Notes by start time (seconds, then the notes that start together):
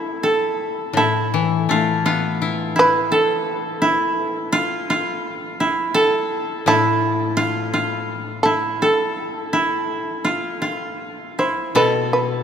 Already playing: E4
0.23 A4
0.93 A2 E4 A4
1.34 E3
1.69 A3 F4
2.06 B3 F4
2.42 E4
2.76 E4 B4
3.12 A4
3.82 E4
4.52 F4
4.90 F4
5.60 E4
5.94 A4
6.66 A2 E4 A4
7.37 F4
7.74 F4
8.43 E4 A4
8.82 A4
9.53 E4
10.25 F4
10.62 F4
11.39 E4 C5
11.75 B2 A4 B4
12.13 B4